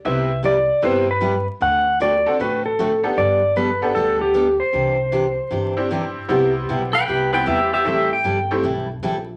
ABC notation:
X:1
M:4/4
L:1/8
Q:"Swing" 1/4=154
K:C
V:1 name="Pedal steel guitar"
z8 | z8 | z8 | z8 |
z3 [Bg] [Bg] [Bg] [Ge] [Ge] | [Ge] g2 z4 z |]
V:2 name="Electric slide guitar"
e2 d2 c B2 z | ^f2 d2 B A2 z | d2 B2 A G2 c- | c6 z2 |
z8 | z8 |]
V:3 name="Honky-tonk piano"
[CEGB] z3 [CEGB] z3 | z3 [CD^FA] z3 [B,DGA] | z3 [B,DGA]3 z2 | z4 z [CDEG]3 |
[G,B,CEG]3 z2 [G,B,CEG]3 | [G,A,CEG] z2 [G,A,CEG] z4 |]
V:4 name="Steel-string acoustic guitar"
[C,G,B,EG] z [C,G,B,EG] z [C,G,B,EG] z [C,G,B,EG] z | [D,A,C^FA] z [D,A,CFA] z [D,A,CFA] z [D,A,CFA] z | [G,B,DA] z [G,B,DA] z [G,B,DA] z [G,B,DA] z | [C,E,DG] z [C,E,DG] z [C,E,DG] z [C,E,DG] z |
[C,G,B,EG] z [C,G,B,EG] z [C,G,B,EG] z [C,G,B,EG] z | [E,G,CEA] z [E,G,CEA] z [E,G,CEA] z [E,G,CEA] z |]
V:5 name="Upright bass" clef=bass
C,,4 G,,4 | D,,4 A,,,4 | G,,,4 D,,4 | C,,4 G,,,4 |
C,,2 B,,,2 C,,2 E,,2 | A,,,2 G,,,2 B,,,2 _B,,,2 |]